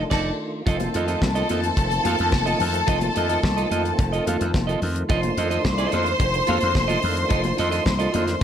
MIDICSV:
0, 0, Header, 1, 7, 480
1, 0, Start_track
1, 0, Tempo, 553506
1, 581, Time_signature, 4, 2, 24, 8
1, 7315, End_track
2, 0, Start_track
2, 0, Title_t, "String section"
2, 0, Program_c, 0, 48
2, 93, Note_on_c, 0, 81, 90
2, 96, Note_on_c, 0, 69, 93
2, 259, Note_off_c, 0, 81, 0
2, 261, Note_off_c, 0, 69, 0
2, 569, Note_on_c, 0, 69, 95
2, 571, Note_on_c, 0, 81, 112
2, 4139, Note_off_c, 0, 69, 0
2, 4140, Note_off_c, 0, 81, 0
2, 4426, Note_on_c, 0, 84, 110
2, 4429, Note_on_c, 0, 72, 108
2, 7315, Note_off_c, 0, 72, 0
2, 7315, Note_off_c, 0, 84, 0
2, 7315, End_track
3, 0, Start_track
3, 0, Title_t, "Clean electric guitar"
3, 0, Program_c, 1, 27
3, 88, Note_on_c, 1, 74, 77
3, 98, Note_on_c, 1, 69, 79
3, 104, Note_on_c, 1, 63, 84
3, 257, Note_off_c, 1, 74, 0
3, 263, Note_off_c, 1, 69, 0
3, 266, Note_off_c, 1, 63, 0
3, 571, Note_on_c, 1, 65, 76
3, 579, Note_on_c, 1, 69, 89
3, 588, Note_on_c, 1, 75, 82
3, 680, Note_off_c, 1, 75, 0
3, 690, Note_off_c, 1, 69, 0
3, 763, Note_off_c, 1, 65, 0
3, 821, Note_on_c, 1, 65, 59
3, 829, Note_on_c, 1, 69, 63
3, 838, Note_on_c, 1, 75, 68
3, 924, Note_off_c, 1, 75, 0
3, 934, Note_on_c, 1, 75, 66
3, 937, Note_off_c, 1, 69, 0
3, 939, Note_off_c, 1, 65, 0
3, 948, Note_on_c, 1, 69, 65
3, 949, Note_on_c, 1, 65, 52
3, 1051, Note_off_c, 1, 65, 0
3, 1058, Note_off_c, 1, 69, 0
3, 1062, Note_off_c, 1, 75, 0
3, 1173, Note_on_c, 1, 75, 82
3, 1178, Note_on_c, 1, 69, 65
3, 1184, Note_on_c, 1, 65, 53
3, 1285, Note_off_c, 1, 65, 0
3, 1289, Note_off_c, 1, 69, 0
3, 1295, Note_on_c, 1, 65, 58
3, 1297, Note_off_c, 1, 75, 0
3, 1300, Note_on_c, 1, 69, 68
3, 1307, Note_on_c, 1, 75, 63
3, 1403, Note_off_c, 1, 75, 0
3, 1412, Note_off_c, 1, 69, 0
3, 1445, Note_off_c, 1, 65, 0
3, 1768, Note_on_c, 1, 65, 69
3, 1778, Note_on_c, 1, 69, 73
3, 1785, Note_on_c, 1, 77, 74
3, 1894, Note_off_c, 1, 77, 0
3, 1898, Note_off_c, 1, 69, 0
3, 1961, Note_off_c, 1, 65, 0
3, 2132, Note_on_c, 1, 75, 84
3, 2141, Note_on_c, 1, 69, 70
3, 2146, Note_on_c, 1, 65, 61
3, 2245, Note_off_c, 1, 65, 0
3, 2250, Note_off_c, 1, 69, 0
3, 2255, Note_off_c, 1, 75, 0
3, 2486, Note_on_c, 1, 65, 75
3, 2492, Note_on_c, 1, 69, 84
3, 2503, Note_on_c, 1, 75, 82
3, 2603, Note_off_c, 1, 75, 0
3, 2613, Note_off_c, 1, 69, 0
3, 2680, Note_off_c, 1, 65, 0
3, 2732, Note_on_c, 1, 65, 55
3, 2743, Note_on_c, 1, 69, 64
3, 2749, Note_on_c, 1, 75, 64
3, 2844, Note_off_c, 1, 75, 0
3, 2850, Note_off_c, 1, 69, 0
3, 2854, Note_on_c, 1, 75, 75
3, 2856, Note_off_c, 1, 65, 0
3, 2861, Note_on_c, 1, 69, 59
3, 2867, Note_on_c, 1, 65, 60
3, 2965, Note_off_c, 1, 65, 0
3, 2967, Note_off_c, 1, 69, 0
3, 2970, Note_off_c, 1, 75, 0
3, 3093, Note_on_c, 1, 75, 73
3, 3102, Note_on_c, 1, 69, 70
3, 3107, Note_on_c, 1, 65, 60
3, 3200, Note_off_c, 1, 65, 0
3, 3206, Note_off_c, 1, 69, 0
3, 3211, Note_on_c, 1, 65, 53
3, 3213, Note_off_c, 1, 75, 0
3, 3217, Note_on_c, 1, 69, 65
3, 3223, Note_on_c, 1, 75, 71
3, 3331, Note_off_c, 1, 75, 0
3, 3339, Note_off_c, 1, 69, 0
3, 3362, Note_off_c, 1, 65, 0
3, 3577, Note_on_c, 1, 75, 85
3, 3586, Note_on_c, 1, 69, 74
3, 3594, Note_on_c, 1, 65, 70
3, 3687, Note_off_c, 1, 65, 0
3, 3697, Note_off_c, 1, 69, 0
3, 3697, Note_on_c, 1, 65, 54
3, 3708, Note_on_c, 1, 69, 69
3, 3711, Note_off_c, 1, 75, 0
3, 3715, Note_on_c, 1, 77, 61
3, 3811, Note_off_c, 1, 77, 0
3, 3817, Note_off_c, 1, 69, 0
3, 3845, Note_off_c, 1, 65, 0
3, 4050, Note_on_c, 1, 75, 89
3, 4058, Note_on_c, 1, 69, 72
3, 4067, Note_on_c, 1, 65, 78
3, 4169, Note_off_c, 1, 65, 0
3, 4174, Note_off_c, 1, 69, 0
3, 4179, Note_off_c, 1, 75, 0
3, 4412, Note_on_c, 1, 65, 90
3, 4418, Note_on_c, 1, 69, 85
3, 4427, Note_on_c, 1, 75, 104
3, 4528, Note_off_c, 1, 75, 0
3, 4540, Note_off_c, 1, 69, 0
3, 4603, Note_off_c, 1, 65, 0
3, 4660, Note_on_c, 1, 65, 55
3, 4668, Note_on_c, 1, 69, 70
3, 4672, Note_on_c, 1, 75, 66
3, 4762, Note_off_c, 1, 75, 0
3, 4770, Note_off_c, 1, 69, 0
3, 4773, Note_on_c, 1, 75, 73
3, 4777, Note_off_c, 1, 65, 0
3, 4780, Note_on_c, 1, 69, 62
3, 4788, Note_on_c, 1, 65, 55
3, 4880, Note_off_c, 1, 65, 0
3, 4888, Note_off_c, 1, 69, 0
3, 4889, Note_off_c, 1, 75, 0
3, 5013, Note_on_c, 1, 75, 84
3, 5019, Note_on_c, 1, 69, 71
3, 5027, Note_on_c, 1, 65, 63
3, 5121, Note_off_c, 1, 65, 0
3, 5129, Note_off_c, 1, 69, 0
3, 5131, Note_on_c, 1, 65, 62
3, 5137, Note_off_c, 1, 75, 0
3, 5139, Note_on_c, 1, 69, 61
3, 5147, Note_on_c, 1, 75, 67
3, 5248, Note_off_c, 1, 75, 0
3, 5256, Note_off_c, 1, 69, 0
3, 5282, Note_off_c, 1, 65, 0
3, 5610, Note_on_c, 1, 65, 72
3, 5620, Note_on_c, 1, 69, 78
3, 5628, Note_on_c, 1, 77, 80
3, 5726, Note_off_c, 1, 77, 0
3, 5727, Note_off_c, 1, 69, 0
3, 5802, Note_off_c, 1, 65, 0
3, 5965, Note_on_c, 1, 75, 86
3, 5969, Note_on_c, 1, 69, 75
3, 5977, Note_on_c, 1, 65, 73
3, 6073, Note_off_c, 1, 65, 0
3, 6075, Note_off_c, 1, 69, 0
3, 6081, Note_off_c, 1, 75, 0
3, 6321, Note_on_c, 1, 65, 79
3, 6332, Note_on_c, 1, 69, 87
3, 6337, Note_on_c, 1, 75, 83
3, 6439, Note_off_c, 1, 75, 0
3, 6448, Note_off_c, 1, 69, 0
3, 6517, Note_off_c, 1, 65, 0
3, 6568, Note_on_c, 1, 65, 69
3, 6579, Note_on_c, 1, 69, 71
3, 6586, Note_on_c, 1, 75, 85
3, 6679, Note_off_c, 1, 75, 0
3, 6682, Note_off_c, 1, 69, 0
3, 6689, Note_on_c, 1, 75, 72
3, 6693, Note_off_c, 1, 65, 0
3, 6693, Note_on_c, 1, 69, 62
3, 6703, Note_on_c, 1, 65, 61
3, 6802, Note_off_c, 1, 65, 0
3, 6806, Note_off_c, 1, 69, 0
3, 6809, Note_off_c, 1, 75, 0
3, 6927, Note_on_c, 1, 75, 79
3, 6935, Note_on_c, 1, 69, 71
3, 6940, Note_on_c, 1, 65, 66
3, 7034, Note_off_c, 1, 65, 0
3, 7042, Note_off_c, 1, 69, 0
3, 7044, Note_on_c, 1, 65, 54
3, 7049, Note_off_c, 1, 75, 0
3, 7053, Note_on_c, 1, 69, 54
3, 7059, Note_on_c, 1, 75, 64
3, 7160, Note_off_c, 1, 75, 0
3, 7170, Note_off_c, 1, 69, 0
3, 7198, Note_off_c, 1, 65, 0
3, 7315, End_track
4, 0, Start_track
4, 0, Title_t, "Tonewheel organ"
4, 0, Program_c, 2, 16
4, 0, Note_on_c, 2, 51, 71
4, 0, Note_on_c, 2, 57, 66
4, 0, Note_on_c, 2, 62, 62
4, 0, Note_on_c, 2, 65, 77
4, 544, Note_off_c, 2, 57, 0
4, 548, Note_off_c, 2, 51, 0
4, 548, Note_off_c, 2, 62, 0
4, 563, Note_off_c, 2, 65, 0
4, 575, Note_on_c, 2, 60, 62
4, 576, Note_on_c, 2, 51, 72
4, 576, Note_on_c, 2, 57, 57
4, 577, Note_on_c, 2, 65, 68
4, 4382, Note_off_c, 2, 60, 0
4, 4408, Note_on_c, 2, 62, 64
4, 7315, Note_off_c, 2, 51, 0
4, 7315, Note_off_c, 2, 57, 0
4, 7315, Note_off_c, 2, 62, 0
4, 7315, Note_off_c, 2, 65, 0
4, 7315, End_track
5, 0, Start_track
5, 0, Title_t, "Slap bass"
5, 0, Program_c, 3, 36
5, 101, Note_on_c, 3, 29, 89
5, 264, Note_off_c, 3, 29, 0
5, 580, Note_on_c, 3, 29, 94
5, 752, Note_off_c, 3, 29, 0
5, 825, Note_on_c, 3, 41, 102
5, 995, Note_off_c, 3, 41, 0
5, 1059, Note_on_c, 3, 36, 92
5, 1231, Note_off_c, 3, 36, 0
5, 1301, Note_on_c, 3, 41, 76
5, 1473, Note_off_c, 3, 41, 0
5, 1540, Note_on_c, 3, 29, 82
5, 1712, Note_off_c, 3, 29, 0
5, 1780, Note_on_c, 3, 41, 85
5, 1866, Note_off_c, 3, 41, 0
5, 1908, Note_on_c, 3, 41, 85
5, 1991, Note_off_c, 3, 41, 0
5, 2020, Note_on_c, 3, 29, 89
5, 2192, Note_off_c, 3, 29, 0
5, 2261, Note_on_c, 3, 41, 100
5, 2433, Note_off_c, 3, 41, 0
5, 2497, Note_on_c, 3, 29, 91
5, 2670, Note_off_c, 3, 29, 0
5, 2747, Note_on_c, 3, 41, 88
5, 2917, Note_off_c, 3, 41, 0
5, 2982, Note_on_c, 3, 36, 89
5, 3153, Note_off_c, 3, 36, 0
5, 3219, Note_on_c, 3, 41, 77
5, 3391, Note_off_c, 3, 41, 0
5, 3459, Note_on_c, 3, 29, 83
5, 3631, Note_off_c, 3, 29, 0
5, 3702, Note_on_c, 3, 41, 91
5, 3787, Note_off_c, 3, 41, 0
5, 3825, Note_on_c, 3, 41, 86
5, 3909, Note_off_c, 3, 41, 0
5, 3943, Note_on_c, 3, 29, 102
5, 4114, Note_off_c, 3, 29, 0
5, 4182, Note_on_c, 3, 41, 92
5, 4353, Note_off_c, 3, 41, 0
5, 4424, Note_on_c, 3, 29, 103
5, 4594, Note_off_c, 3, 29, 0
5, 4659, Note_on_c, 3, 41, 104
5, 4831, Note_off_c, 3, 41, 0
5, 4900, Note_on_c, 3, 36, 89
5, 5071, Note_off_c, 3, 36, 0
5, 5142, Note_on_c, 3, 41, 88
5, 5313, Note_off_c, 3, 41, 0
5, 5376, Note_on_c, 3, 29, 91
5, 5549, Note_off_c, 3, 29, 0
5, 5628, Note_on_c, 3, 41, 94
5, 5711, Note_off_c, 3, 41, 0
5, 5747, Note_on_c, 3, 41, 87
5, 5830, Note_off_c, 3, 41, 0
5, 5857, Note_on_c, 3, 29, 85
5, 6030, Note_off_c, 3, 29, 0
5, 6103, Note_on_c, 3, 41, 92
5, 6273, Note_off_c, 3, 41, 0
5, 6339, Note_on_c, 3, 29, 104
5, 6511, Note_off_c, 3, 29, 0
5, 6583, Note_on_c, 3, 41, 98
5, 6753, Note_off_c, 3, 41, 0
5, 6820, Note_on_c, 3, 36, 99
5, 6992, Note_off_c, 3, 36, 0
5, 7065, Note_on_c, 3, 41, 88
5, 7235, Note_off_c, 3, 41, 0
5, 7315, End_track
6, 0, Start_track
6, 0, Title_t, "Muted clean electric guitar strokes"
6, 690, Note_on_c, 9, 29, 41
6, 777, Note_off_c, 9, 29, 0
6, 1072, Note_on_c, 9, 29, 42
6, 1159, Note_off_c, 9, 29, 0
6, 1414, Note_on_c, 9, 29, 49
6, 1500, Note_off_c, 9, 29, 0
6, 1649, Note_on_c, 9, 29, 39
6, 1736, Note_off_c, 9, 29, 0
6, 1898, Note_on_c, 9, 29, 44
6, 1984, Note_off_c, 9, 29, 0
6, 2005, Note_on_c, 9, 29, 43
6, 2092, Note_off_c, 9, 29, 0
6, 2255, Note_on_c, 9, 29, 52
6, 2342, Note_off_c, 9, 29, 0
6, 2370, Note_on_c, 9, 29, 40
6, 2457, Note_off_c, 9, 29, 0
6, 2613, Note_on_c, 9, 29, 40
6, 2700, Note_off_c, 9, 29, 0
6, 3341, Note_on_c, 9, 29, 44
6, 3428, Note_off_c, 9, 29, 0
6, 3452, Note_on_c, 9, 29, 45
6, 3539, Note_off_c, 9, 29, 0
6, 3814, Note_on_c, 9, 29, 36
6, 3901, Note_off_c, 9, 29, 0
6, 3934, Note_on_c, 9, 29, 45
6, 4021, Note_off_c, 9, 29, 0
6, 4180, Note_on_c, 9, 29, 38
6, 4266, Note_off_c, 9, 29, 0
6, 4293, Note_on_c, 9, 29, 39
6, 4380, Note_off_c, 9, 29, 0
6, 4538, Note_on_c, 9, 29, 40
6, 4625, Note_off_c, 9, 29, 0
6, 4890, Note_on_c, 9, 29, 39
6, 4977, Note_off_c, 9, 29, 0
6, 5498, Note_on_c, 9, 29, 50
6, 5585, Note_off_c, 9, 29, 0
6, 5729, Note_on_c, 9, 29, 51
6, 5816, Note_off_c, 9, 29, 0
6, 5847, Note_on_c, 9, 29, 38
6, 5934, Note_off_c, 9, 29, 0
6, 6083, Note_on_c, 9, 29, 40
6, 6170, Note_off_c, 9, 29, 0
6, 6204, Note_on_c, 9, 29, 41
6, 6291, Note_off_c, 9, 29, 0
6, 6449, Note_on_c, 9, 29, 46
6, 6536, Note_off_c, 9, 29, 0
6, 6813, Note_on_c, 9, 29, 52
6, 6900, Note_off_c, 9, 29, 0
6, 7170, Note_on_c, 9, 29, 51
6, 7257, Note_off_c, 9, 29, 0
6, 7315, End_track
7, 0, Start_track
7, 0, Title_t, "Drums"
7, 95, Note_on_c, 9, 49, 81
7, 98, Note_on_c, 9, 36, 98
7, 99, Note_on_c, 9, 38, 109
7, 182, Note_off_c, 9, 49, 0
7, 185, Note_off_c, 9, 36, 0
7, 185, Note_off_c, 9, 38, 0
7, 576, Note_on_c, 9, 64, 62
7, 578, Note_on_c, 9, 36, 109
7, 579, Note_on_c, 9, 42, 78
7, 663, Note_off_c, 9, 64, 0
7, 664, Note_off_c, 9, 36, 0
7, 666, Note_off_c, 9, 42, 0
7, 692, Note_on_c, 9, 42, 47
7, 697, Note_on_c, 9, 62, 39
7, 697, Note_on_c, 9, 63, 73
7, 778, Note_off_c, 9, 42, 0
7, 784, Note_off_c, 9, 62, 0
7, 784, Note_off_c, 9, 63, 0
7, 816, Note_on_c, 9, 42, 74
7, 903, Note_off_c, 9, 42, 0
7, 937, Note_on_c, 9, 42, 51
7, 1023, Note_off_c, 9, 42, 0
7, 1056, Note_on_c, 9, 36, 93
7, 1058, Note_on_c, 9, 62, 40
7, 1058, Note_on_c, 9, 63, 80
7, 1061, Note_on_c, 9, 38, 94
7, 1142, Note_off_c, 9, 36, 0
7, 1145, Note_off_c, 9, 62, 0
7, 1145, Note_off_c, 9, 63, 0
7, 1148, Note_off_c, 9, 38, 0
7, 1175, Note_on_c, 9, 42, 46
7, 1262, Note_off_c, 9, 42, 0
7, 1294, Note_on_c, 9, 42, 57
7, 1304, Note_on_c, 9, 63, 71
7, 1381, Note_off_c, 9, 42, 0
7, 1391, Note_off_c, 9, 63, 0
7, 1418, Note_on_c, 9, 42, 42
7, 1505, Note_off_c, 9, 42, 0
7, 1535, Note_on_c, 9, 36, 105
7, 1535, Note_on_c, 9, 42, 76
7, 1622, Note_off_c, 9, 36, 0
7, 1622, Note_off_c, 9, 42, 0
7, 1654, Note_on_c, 9, 62, 36
7, 1659, Note_on_c, 9, 42, 47
7, 1741, Note_off_c, 9, 62, 0
7, 1746, Note_off_c, 9, 42, 0
7, 1777, Note_on_c, 9, 42, 60
7, 1779, Note_on_c, 9, 63, 81
7, 1864, Note_off_c, 9, 42, 0
7, 1866, Note_off_c, 9, 63, 0
7, 1896, Note_on_c, 9, 42, 42
7, 1982, Note_off_c, 9, 42, 0
7, 2009, Note_on_c, 9, 63, 75
7, 2015, Note_on_c, 9, 36, 99
7, 2018, Note_on_c, 9, 38, 94
7, 2096, Note_off_c, 9, 63, 0
7, 2102, Note_off_c, 9, 36, 0
7, 2104, Note_off_c, 9, 38, 0
7, 2135, Note_on_c, 9, 63, 50
7, 2139, Note_on_c, 9, 42, 40
7, 2222, Note_off_c, 9, 63, 0
7, 2226, Note_off_c, 9, 42, 0
7, 2250, Note_on_c, 9, 64, 70
7, 2254, Note_on_c, 9, 46, 65
7, 2337, Note_off_c, 9, 64, 0
7, 2341, Note_off_c, 9, 46, 0
7, 2376, Note_on_c, 9, 42, 53
7, 2462, Note_off_c, 9, 42, 0
7, 2492, Note_on_c, 9, 62, 29
7, 2492, Note_on_c, 9, 64, 72
7, 2495, Note_on_c, 9, 42, 70
7, 2497, Note_on_c, 9, 36, 109
7, 2579, Note_off_c, 9, 62, 0
7, 2579, Note_off_c, 9, 64, 0
7, 2582, Note_off_c, 9, 42, 0
7, 2583, Note_off_c, 9, 36, 0
7, 2612, Note_on_c, 9, 42, 44
7, 2617, Note_on_c, 9, 63, 87
7, 2699, Note_off_c, 9, 42, 0
7, 2704, Note_off_c, 9, 63, 0
7, 2737, Note_on_c, 9, 42, 72
7, 2824, Note_off_c, 9, 42, 0
7, 2856, Note_on_c, 9, 42, 48
7, 2943, Note_off_c, 9, 42, 0
7, 2976, Note_on_c, 9, 63, 73
7, 2979, Note_on_c, 9, 36, 95
7, 2985, Note_on_c, 9, 38, 100
7, 3063, Note_off_c, 9, 63, 0
7, 3065, Note_off_c, 9, 36, 0
7, 3071, Note_off_c, 9, 38, 0
7, 3101, Note_on_c, 9, 42, 44
7, 3188, Note_off_c, 9, 42, 0
7, 3221, Note_on_c, 9, 42, 57
7, 3223, Note_on_c, 9, 63, 72
7, 3308, Note_off_c, 9, 42, 0
7, 3310, Note_off_c, 9, 63, 0
7, 3342, Note_on_c, 9, 42, 40
7, 3429, Note_off_c, 9, 42, 0
7, 3455, Note_on_c, 9, 62, 38
7, 3458, Note_on_c, 9, 36, 120
7, 3460, Note_on_c, 9, 42, 82
7, 3542, Note_off_c, 9, 62, 0
7, 3545, Note_off_c, 9, 36, 0
7, 3547, Note_off_c, 9, 42, 0
7, 3584, Note_on_c, 9, 42, 41
7, 3671, Note_off_c, 9, 42, 0
7, 3704, Note_on_c, 9, 42, 63
7, 3705, Note_on_c, 9, 63, 78
7, 3791, Note_off_c, 9, 42, 0
7, 3791, Note_off_c, 9, 63, 0
7, 3823, Note_on_c, 9, 42, 49
7, 3910, Note_off_c, 9, 42, 0
7, 3938, Note_on_c, 9, 36, 111
7, 3939, Note_on_c, 9, 38, 93
7, 3946, Note_on_c, 9, 62, 35
7, 3946, Note_on_c, 9, 63, 75
7, 4025, Note_off_c, 9, 36, 0
7, 4026, Note_off_c, 9, 38, 0
7, 4033, Note_off_c, 9, 62, 0
7, 4033, Note_off_c, 9, 63, 0
7, 4067, Note_on_c, 9, 42, 42
7, 4069, Note_on_c, 9, 63, 52
7, 4154, Note_off_c, 9, 42, 0
7, 4155, Note_off_c, 9, 63, 0
7, 4179, Note_on_c, 9, 46, 62
7, 4180, Note_on_c, 9, 64, 72
7, 4266, Note_off_c, 9, 46, 0
7, 4267, Note_off_c, 9, 64, 0
7, 4299, Note_on_c, 9, 42, 54
7, 4386, Note_off_c, 9, 42, 0
7, 4418, Note_on_c, 9, 42, 69
7, 4418, Note_on_c, 9, 62, 30
7, 4418, Note_on_c, 9, 64, 69
7, 4420, Note_on_c, 9, 36, 115
7, 4504, Note_off_c, 9, 42, 0
7, 4505, Note_off_c, 9, 62, 0
7, 4505, Note_off_c, 9, 64, 0
7, 4507, Note_off_c, 9, 36, 0
7, 4537, Note_on_c, 9, 42, 52
7, 4544, Note_on_c, 9, 63, 80
7, 4623, Note_off_c, 9, 42, 0
7, 4631, Note_off_c, 9, 63, 0
7, 4661, Note_on_c, 9, 42, 66
7, 4747, Note_off_c, 9, 42, 0
7, 4778, Note_on_c, 9, 42, 47
7, 4865, Note_off_c, 9, 42, 0
7, 4898, Note_on_c, 9, 36, 98
7, 4899, Note_on_c, 9, 38, 98
7, 4903, Note_on_c, 9, 63, 86
7, 4984, Note_off_c, 9, 36, 0
7, 4986, Note_off_c, 9, 38, 0
7, 4990, Note_off_c, 9, 63, 0
7, 5014, Note_on_c, 9, 42, 48
7, 5101, Note_off_c, 9, 42, 0
7, 5134, Note_on_c, 9, 42, 53
7, 5147, Note_on_c, 9, 63, 77
7, 5221, Note_off_c, 9, 42, 0
7, 5234, Note_off_c, 9, 63, 0
7, 5255, Note_on_c, 9, 42, 46
7, 5342, Note_off_c, 9, 42, 0
7, 5374, Note_on_c, 9, 42, 82
7, 5375, Note_on_c, 9, 36, 109
7, 5381, Note_on_c, 9, 62, 41
7, 5461, Note_off_c, 9, 36, 0
7, 5461, Note_off_c, 9, 42, 0
7, 5468, Note_off_c, 9, 62, 0
7, 5496, Note_on_c, 9, 42, 41
7, 5583, Note_off_c, 9, 42, 0
7, 5610, Note_on_c, 9, 42, 53
7, 5626, Note_on_c, 9, 63, 93
7, 5697, Note_off_c, 9, 42, 0
7, 5713, Note_off_c, 9, 63, 0
7, 5729, Note_on_c, 9, 42, 45
7, 5816, Note_off_c, 9, 42, 0
7, 5854, Note_on_c, 9, 36, 109
7, 5855, Note_on_c, 9, 38, 94
7, 5858, Note_on_c, 9, 63, 77
7, 5941, Note_off_c, 9, 36, 0
7, 5942, Note_off_c, 9, 38, 0
7, 5945, Note_off_c, 9, 63, 0
7, 5976, Note_on_c, 9, 42, 48
7, 5987, Note_on_c, 9, 62, 37
7, 5987, Note_on_c, 9, 63, 54
7, 6063, Note_off_c, 9, 42, 0
7, 6073, Note_off_c, 9, 62, 0
7, 6073, Note_off_c, 9, 63, 0
7, 6091, Note_on_c, 9, 46, 67
7, 6100, Note_on_c, 9, 64, 67
7, 6178, Note_off_c, 9, 46, 0
7, 6187, Note_off_c, 9, 64, 0
7, 6217, Note_on_c, 9, 42, 55
7, 6303, Note_off_c, 9, 42, 0
7, 6333, Note_on_c, 9, 42, 69
7, 6336, Note_on_c, 9, 64, 67
7, 6337, Note_on_c, 9, 36, 121
7, 6420, Note_off_c, 9, 42, 0
7, 6423, Note_off_c, 9, 64, 0
7, 6424, Note_off_c, 9, 36, 0
7, 6450, Note_on_c, 9, 42, 48
7, 6459, Note_on_c, 9, 63, 82
7, 6537, Note_off_c, 9, 42, 0
7, 6546, Note_off_c, 9, 63, 0
7, 6576, Note_on_c, 9, 42, 74
7, 6663, Note_off_c, 9, 42, 0
7, 6695, Note_on_c, 9, 42, 51
7, 6782, Note_off_c, 9, 42, 0
7, 6815, Note_on_c, 9, 36, 87
7, 6818, Note_on_c, 9, 38, 109
7, 6822, Note_on_c, 9, 63, 85
7, 6902, Note_off_c, 9, 36, 0
7, 6905, Note_off_c, 9, 38, 0
7, 6909, Note_off_c, 9, 63, 0
7, 6934, Note_on_c, 9, 42, 45
7, 7020, Note_off_c, 9, 42, 0
7, 7056, Note_on_c, 9, 42, 59
7, 7065, Note_on_c, 9, 63, 84
7, 7143, Note_off_c, 9, 42, 0
7, 7152, Note_off_c, 9, 63, 0
7, 7176, Note_on_c, 9, 38, 36
7, 7176, Note_on_c, 9, 42, 42
7, 7263, Note_off_c, 9, 38, 0
7, 7263, Note_off_c, 9, 42, 0
7, 7315, End_track
0, 0, End_of_file